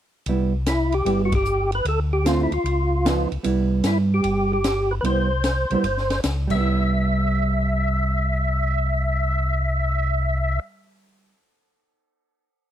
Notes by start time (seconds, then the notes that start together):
0.26 C2 G3 B3 E4, ride
0.66 E4, snare, hi-hat pedal, ride
0.92 G4, ride
1.05 G1 G3 B3 E4, ride
1.25 F#4
1.32 G4, kick, ride
1.45 hi-hat pedal
1.72 B4, ride
1.85 D2 A4, ride
2.13 G4
2.24 D3 A3 C4 F4, snare, hi-hat pedal, ride
2.43 E4
2.51 D2 F4, ride
2.64 C#2, ride
3.05 F3 B3 D#4, snare, hi-hat pedal, ride
3.31 C#2, ride
3.43 C2 G3 B3 E4, ride
3.83 G2 E4, snare, hi-hat pedal, ride
4.14 G4
4.24 G1, ride
4.53 G4
4.64 snare, hi-hat pedal, ride
4.91 B4
5.01 C2 G3 B3 E4 B4, ride
5.06 C5
5.44 snare, hi-hat pedal, ride
5.70 C2 G3 B3 E4, ride
5.83 G1, ride
5.97 snare
6.10 snare, ride
6.24 C#2, snare, hi-hat pedal, ride
6.47 C2 G3 E5, kick, crash
6.55 B3
6.60 E4